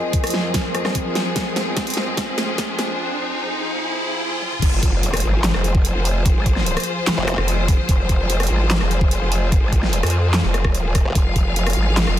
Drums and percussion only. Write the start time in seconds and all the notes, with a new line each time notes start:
0.13 kick, closed hi-hat
0.24 cross-stick, closed hi-hat
0.27 closed hi-hat
0.30 snare, closed hi-hat
0.54 kick, snare, closed hi-hat
0.75 cross-stick, closed hi-hat
0.85 cross-stick, snare
0.95 kick, closed hi-hat
1.15 snare, closed hi-hat
1.36 kick, snare, closed hi-hat
1.56 snare, closed hi-hat
1.77 kick, snare, closed hi-hat
1.87 closed hi-hat
1.90 closed hi-hat
1.94 snare, closed hi-hat
2.17 kick, snare, closed hi-hat
2.38 snare, closed hi-hat
2.58 kick, snare, closed hi-hat
2.79 snare, closed hi-hat
4.42 high tom
4.52 mid tom
4.62 kick, closed hi-hat, crash
4.83 kick, closed hi-hat
5.03 closed hi-hat
5.14 cross-stick, closed hi-hat
5.17 closed hi-hat
5.20 closed hi-hat
5.44 snare, clap, closed hi-hat
5.54 cross-stick
5.64 closed hi-hat
5.75 kick
5.85 closed hi-hat
6.05 open hi-hat
6.26 kick, closed hi-hat
6.46 kick, closed hi-hat
6.56 snare
6.66 closed hi-hat
6.77 cross-stick, closed hi-hat
6.80 closed hi-hat
6.83 closed hi-hat
7.07 snare, clap, closed hi-hat
7.28 cross-stick, closed hi-hat
7.38 cross-stick
7.48 closed hi-hat
7.68 kick, open hi-hat
7.89 kick, closed hi-hat
8.09 kick, closed hi-hat
8.30 closed hi-hat
8.40 cross-stick, closed hi-hat
8.43 closed hi-hat
8.47 closed hi-hat
8.71 snare, clap, closed hi-hat
8.81 cross-stick
8.91 closed hi-hat
9.01 kick
9.11 closed hi-hat
9.32 open hi-hat
9.52 kick, closed hi-hat
9.73 kick, closed hi-hat
9.83 snare
9.93 closed hi-hat
10.03 cross-stick, closed hi-hat
10.07 closed hi-hat
10.10 closed hi-hat
10.34 snare, clap, closed hi-hat
10.54 cross-stick, closed hi-hat
10.64 kick, cross-stick
10.75 closed hi-hat
10.95 kick, cross-stick, open hi-hat
11.15 kick, closed hi-hat
11.36 kick, closed hi-hat
11.56 closed hi-hat
11.67 cross-stick, closed hi-hat
11.70 closed hi-hat
11.73 closed hi-hat
11.97 snare, clap, closed hi-hat
12.07 cross-stick